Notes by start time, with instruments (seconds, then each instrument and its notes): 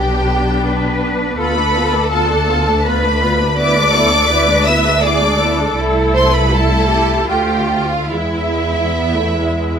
Already playing: double bass section B1, viola section B3 D4, cello section G4, violin section G4 G5
0.66 cello section B4
1.38 double bass section D2, viola section B3 F4, cello section A4, violin section B4 B5
1.57 viola section A3 D4
1.75 viola section B3 F4
1.93 viola section A3 D4
2.11 viola section B3 F4, violin section A4 A5
2.29 viola section A3 D4
2.48 viola section B3 F4
2.66 viola section A3 D4
2.84 viola section B3 F4, cello section B4, violin section B4 B5
3.04 viola section A3 D4
3.22 viola section B3 F4
3.40 viola section A3 D4
3.56 viola section B3 E4, cello section B4, violin section D5 D6
3.77 viola section G#3 D4
3.91 viola section B3 E4, cello section A4
4.12 viola section G#3 D4
4.26 viola section B3, cello section B4
4.30 viola section E4
4.48 viola section G#3 D4
4.63 viola section B3, violin section E5 E6
4.67 viola section E4
4.85 viola section G#3 D4
5.00 viola section B3 E4, cello section G#4, violin section D5 D6
5.22 viola section G#3 D4
5.37 cello section A4
5.41 viola section B3 E4
5.58 viola section G#3 D4
5.76 double bass section C2, viola section A3 E4
6.14 violin section C5 C6
6.31 violin section B4 B5
6.50 viola section A3 E4, cello section E4, violin section A4 A5
6.89 cello section G4
7.26 double bass section D2, viola section A3 F4, cello section F4, violin section G4 G5
7.92 violin section F4 F5
8.10 double bass section E2, viola section G#3 E4, cello section E4, violin section E4 E5
8.96 viola section B3
9.15 viola section A3
9.36 viola section G#3